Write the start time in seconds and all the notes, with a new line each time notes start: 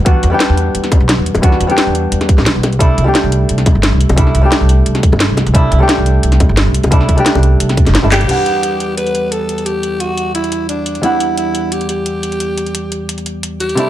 Already playing: E2
0.05 G3 B3 D4 F#4, kick, closed hi-hat
0.23 E2, closed hi-hat
0.30 G3 B3 D4
0.34 G4
0.40 snare, closed hi-hat
0.49 E2
0.57 closed hi-hat
0.75 E2, closed hi-hat
0.84 snare, closed hi-hat
0.92 kick, closed hi-hat, high bongo
1.00 B1
1.09 snare, closed hi-hat
1.18 E2
1.26 closed hi-hat
1.35 E2, closed hi-hat, high bongo
1.42 G3 B3 D4 F#4, kick, closed hi-hat
1.52 snare
1.60 E2, closed hi-hat
1.67 G3 B3 D4, closed hi-hat
1.71 G4
1.78 snare, closed hi-hat
1.86 E2
1.95 closed hi-hat
2.12 E2, closed hi-hat
2.21 snare, closed hi-hat, high bongo
2.29 kick, closed hi-hat
2.38 B1, snare, high bongo
2.46 snare, closed hi-hat
2.55 B1
2.63 snare, closed hi-hat, high bongo
2.72 C2, closed hi-hat
2.79 G3 A3 D4 E4, kick, closed hi-hat
2.98 C2, closed hi-hat
3.04 G3 A3 D4
3.08 G4
3.15 snare, closed hi-hat
3.23 C2
3.32 closed hi-hat
3.49 C2, closed hi-hat
3.58 snare, closed hi-hat
3.66 kick, closed hi-hat, high bongo
3.75 G1
3.83 snare, closed hi-hat
3.92 C2
4.01 closed hi-hat
4.09 C2, closed hi-hat, high bongo
4.16 G3 A3 D4 E4, kick, closed hi-hat
4.27 snare
4.35 C2, closed hi-hat
4.41 G3 A3 D4
4.46 G4
4.52 snare, closed hi-hat
4.61 C2
4.69 closed hi-hat
4.86 C2, closed hi-hat
4.95 snare, closed hi-hat, high bongo
5.03 kick, closed hi-hat
5.12 G1, high bongo
5.20 snare, closed hi-hat
5.29 C2
5.37 snare, closed hi-hat, high bongo
5.46 C2, closed hi-hat
5.54 G3 A3 D4 E4, kick, closed hi-hat
5.71 C2, closed hi-hat
5.79 G3 A3 D4
5.83 G4
5.89 snare, closed hi-hat
5.97 C2
6.06 closed hi-hat
6.23 C2, closed hi-hat
6.32 snare, closed hi-hat
6.40 kick, closed hi-hat, high bongo
6.49 G1
6.57 snare, closed hi-hat
6.66 C2
6.74 closed hi-hat
6.83 C2, closed hi-hat, high bongo
6.91 G3 A3 D4 E4, kick, closed hi-hat
7.01 snare
7.09 C2, kick, closed hi-hat
7.16 G3 A3 D4, closed hi-hat
7.20 G4
7.26 snare, closed hi-hat
7.35 C2, high bongo
7.43 closed hi-hat
7.60 C2, closed hi-hat
7.69 snare, closed hi-hat, high bongo
7.77 kick, closed hi-hat
7.86 G1, snare, closed hi-hat, high bongo
7.95 snare, closed hi-hat
8.03 G1 G3 A3 D4 E4
8.11 G3 A3 D4 G4, clap, closed hi-hat, high bongo
8.21 C2, closed hi-hat
8.27 E2 G3 B3 D4, closed hi-hat, crash
8.31 F#5
8.46 closed hi-hat
8.63 closed hi-hat
8.80 closed hi-hat
8.97 B4, closed hi-hat
9.07 closed hi-hat
9.15 closed hi-hat
9.32 A4, closed hi-hat
9.49 closed hi-hat
9.58 closed hi-hat
9.66 G4, closed hi-hat
9.83 closed hi-hat
10.00 F#4, closed hi-hat
10.17 closed hi-hat
10.35 E4, closed hi-hat
10.44 closed hi-hat
10.52 closed hi-hat
10.69 D4, closed hi-hat
10.86 closed hi-hat
10.95 closed hi-hat
11.02 E2 G3 B3 D4 E4, closed hi-hat
11.06 F#5
11.20 closed hi-hat
11.38 E4, closed hi-hat
11.55 closed hi-hat
11.72 G4, closed hi-hat
11.81 closed hi-hat
11.89 G4, closed hi-hat
12.06 closed hi-hat
12.23 closed hi-hat
12.32 closed hi-hat
12.40 closed hi-hat
12.58 closed hi-hat
12.66 closed hi-hat
12.75 closed hi-hat
12.92 closed hi-hat
13.09 closed hi-hat
13.18 closed hi-hat
13.26 closed hi-hat
13.43 closed hi-hat
13.60 G4, closed hi-hat
13.69 closed hi-hat
13.75 C3 G3 A3 D4, closed hi-hat
13.80 E4